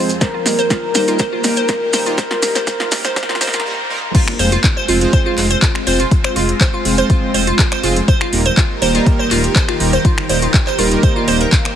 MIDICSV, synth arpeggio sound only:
0, 0, Header, 1, 2, 480
1, 0, Start_track
1, 0, Key_signature, -4, "minor"
1, 0, Tempo, 491803
1, 207, Time_signature, 4, 2, 24, 8
1, 11473, End_track
2, 0, Start_track
2, 0, Title_t, "Synth arpeggio sound"
2, 0, Program_c, 0, 84
2, 206, Note_on_c, 0, 72, 93
2, 268, Note_off_c, 0, 72, 0
2, 332, Note_on_c, 0, 65, 68
2, 388, Note_off_c, 0, 65, 0
2, 573, Note_on_c, 0, 72, 99
2, 629, Note_off_c, 0, 72, 0
2, 687, Note_on_c, 0, 65, 75
2, 749, Note_off_c, 0, 65, 0
2, 927, Note_on_c, 0, 72, 91
2, 989, Note_off_c, 0, 72, 0
2, 1053, Note_on_c, 0, 65, 73
2, 1109, Note_off_c, 0, 65, 0
2, 1167, Note_on_c, 0, 72, 101
2, 1229, Note_off_c, 0, 72, 0
2, 1293, Note_on_c, 0, 65, 75
2, 1349, Note_off_c, 0, 65, 0
2, 1533, Note_on_c, 0, 72, 97
2, 1589, Note_off_c, 0, 72, 0
2, 1647, Note_on_c, 0, 65, 79
2, 1709, Note_off_c, 0, 65, 0
2, 1887, Note_on_c, 0, 72, 99
2, 1949, Note_off_c, 0, 72, 0
2, 2013, Note_on_c, 0, 65, 77
2, 2069, Note_off_c, 0, 65, 0
2, 2127, Note_on_c, 0, 72, 93
2, 2189, Note_off_c, 0, 72, 0
2, 2253, Note_on_c, 0, 65, 73
2, 2309, Note_off_c, 0, 65, 0
2, 2493, Note_on_c, 0, 72, 101
2, 2549, Note_off_c, 0, 72, 0
2, 2607, Note_on_c, 0, 72, 103
2, 2669, Note_off_c, 0, 72, 0
2, 2733, Note_on_c, 0, 65, 75
2, 2789, Note_off_c, 0, 65, 0
2, 2973, Note_on_c, 0, 72, 99
2, 3029, Note_off_c, 0, 72, 0
2, 3087, Note_on_c, 0, 72, 103
2, 3149, Note_off_c, 0, 72, 0
2, 3213, Note_on_c, 0, 65, 81
2, 3269, Note_off_c, 0, 65, 0
2, 3327, Note_on_c, 0, 72, 106
2, 3389, Note_off_c, 0, 72, 0
2, 3453, Note_on_c, 0, 65, 82
2, 3509, Note_off_c, 0, 65, 0
2, 4047, Note_on_c, 0, 65, 83
2, 4109, Note_off_c, 0, 65, 0
2, 4287, Note_on_c, 0, 72, 106
2, 4349, Note_off_c, 0, 72, 0
2, 4413, Note_on_c, 0, 65, 81
2, 4469, Note_off_c, 0, 65, 0
2, 4654, Note_on_c, 0, 72, 103
2, 4709, Note_off_c, 0, 72, 0
2, 4767, Note_on_c, 0, 65, 75
2, 4829, Note_off_c, 0, 65, 0
2, 5007, Note_on_c, 0, 72, 102
2, 5069, Note_off_c, 0, 72, 0
2, 5134, Note_on_c, 0, 65, 79
2, 5189, Note_off_c, 0, 65, 0
2, 5373, Note_on_c, 0, 72, 102
2, 5429, Note_off_c, 0, 72, 0
2, 5487, Note_on_c, 0, 65, 80
2, 5549, Note_off_c, 0, 65, 0
2, 5727, Note_on_c, 0, 72, 108
2, 5789, Note_off_c, 0, 72, 0
2, 5853, Note_on_c, 0, 65, 78
2, 5909, Note_off_c, 0, 65, 0
2, 6093, Note_on_c, 0, 72, 97
2, 6149, Note_off_c, 0, 72, 0
2, 6207, Note_on_c, 0, 65, 78
2, 6269, Note_off_c, 0, 65, 0
2, 6447, Note_on_c, 0, 72, 102
2, 6509, Note_off_c, 0, 72, 0
2, 6573, Note_on_c, 0, 65, 79
2, 6629, Note_off_c, 0, 65, 0
2, 6813, Note_on_c, 0, 72, 102
2, 6869, Note_off_c, 0, 72, 0
2, 6927, Note_on_c, 0, 65, 82
2, 6989, Note_off_c, 0, 65, 0
2, 7167, Note_on_c, 0, 72, 107
2, 7229, Note_off_c, 0, 72, 0
2, 7293, Note_on_c, 0, 65, 77
2, 7349, Note_off_c, 0, 65, 0
2, 7533, Note_on_c, 0, 72, 96
2, 7589, Note_off_c, 0, 72, 0
2, 7647, Note_on_c, 0, 65, 80
2, 7709, Note_off_c, 0, 65, 0
2, 7887, Note_on_c, 0, 72, 105
2, 7949, Note_off_c, 0, 72, 0
2, 8013, Note_on_c, 0, 65, 76
2, 8069, Note_off_c, 0, 65, 0
2, 8253, Note_on_c, 0, 72, 104
2, 8309, Note_off_c, 0, 72, 0
2, 8367, Note_on_c, 0, 65, 86
2, 8429, Note_off_c, 0, 65, 0
2, 8607, Note_on_c, 0, 72, 102
2, 8669, Note_off_c, 0, 72, 0
2, 8734, Note_on_c, 0, 65, 77
2, 8789, Note_off_c, 0, 65, 0
2, 8973, Note_on_c, 0, 72, 104
2, 9029, Note_off_c, 0, 72, 0
2, 9087, Note_on_c, 0, 65, 81
2, 9149, Note_off_c, 0, 65, 0
2, 9327, Note_on_c, 0, 72, 101
2, 9389, Note_off_c, 0, 72, 0
2, 9453, Note_on_c, 0, 65, 74
2, 9509, Note_off_c, 0, 65, 0
2, 9693, Note_on_c, 0, 72, 99
2, 9749, Note_off_c, 0, 72, 0
2, 9807, Note_on_c, 0, 65, 83
2, 9869, Note_off_c, 0, 65, 0
2, 10047, Note_on_c, 0, 72, 98
2, 10109, Note_off_c, 0, 72, 0
2, 10173, Note_on_c, 0, 65, 77
2, 10229, Note_off_c, 0, 65, 0
2, 10413, Note_on_c, 0, 72, 105
2, 10469, Note_off_c, 0, 72, 0
2, 10527, Note_on_c, 0, 65, 78
2, 10589, Note_off_c, 0, 65, 0
2, 10767, Note_on_c, 0, 72, 104
2, 10829, Note_off_c, 0, 72, 0
2, 10893, Note_on_c, 0, 65, 77
2, 10949, Note_off_c, 0, 65, 0
2, 11007, Note_on_c, 0, 72, 105
2, 11069, Note_off_c, 0, 72, 0
2, 11133, Note_on_c, 0, 70, 76
2, 11167, Note_off_c, 0, 70, 0
2, 11247, Note_on_c, 0, 77, 81
2, 11309, Note_off_c, 0, 77, 0
2, 11473, End_track
0, 0, End_of_file